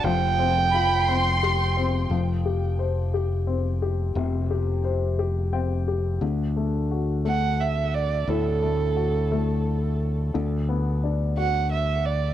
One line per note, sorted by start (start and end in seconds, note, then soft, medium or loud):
0.04 2.06 F1 medium
0.04 2.07 F3 medium
0.04 1.76 G5 loud
0.39 1.07 C4 medium
0.74 2.07 F4 medium
0.74 1.05 B5 loud
1.07 1.75 C4 medium
1.07 2.10 C6 loud
1.43 2.09 G4 medium
1.77 2.10 C4 medium
2.10 4.12 F1 medium
2.10 4.12 F3 medium
2.45 3.12 G4 soft
2.79 4.12 C5 soft
3.14 3.81 G4 medium
3.47 4.81 C4 soft
3.82 4.49 G4 soft
4.15 6.18 F1 medium
4.15 6.18 C3 medium
4.51 5.17 G4 soft
4.84 6.18 C5 soft
5.19 5.86 G4 medium
5.53 6.20 C4 soft
5.53 6.18 G5 medium
5.88 6.21 G4 soft
6.21 8.24 D2 medium
6.21 8.24 D3 medium
6.56 7.23 A3 soft
6.91 8.25 F#4 soft
7.25 8.59 A3 medium
7.25 7.62 F#5 medium
7.60 7.96 E5 medium
7.94 8.31 D5 medium
8.28 10.30 D2 medium
8.28 10.30 A2 medium
8.28 10.01 A4 medium
8.62 9.30 A3 soft
8.96 10.30 F#4 soft
9.32 10.32 A3 medium
10.34 12.34 D2 medium
10.34 12.34 D3 medium
10.69 12.02 B3 soft
11.03 12.34 D4 soft
11.37 12.34 F#4 soft
11.37 11.70 F#5 medium
11.72 12.07 E5 medium
12.05 12.34 D5 medium